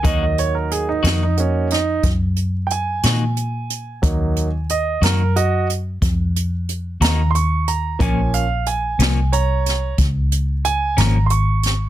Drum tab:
HH |xxxxxxxxxxxx|xxxxxxxxxxxx|xxxxxxxxxxxx|
SD |---o-o---o--|---o-----o--|---o-o---o-o|
BD |o-----o-----|o-----o-----|o-----o-----|